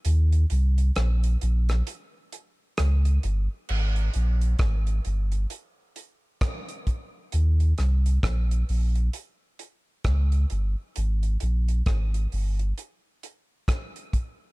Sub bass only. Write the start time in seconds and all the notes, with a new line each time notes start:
0.05 D#2
0.51 C2
0.97 A#1
1.43 A#1
2.79 C#2
3.24 G1
3.70 G#1
4.15 A#1
4.60 G#1
5.06 G1
7.33 D#2
7.79 C2
8.24 A#1
8.69 A#1
10.05 C#2
10.51 G1
10.97 G#1
11.42 A#1
11.87 G#1
12.33 G1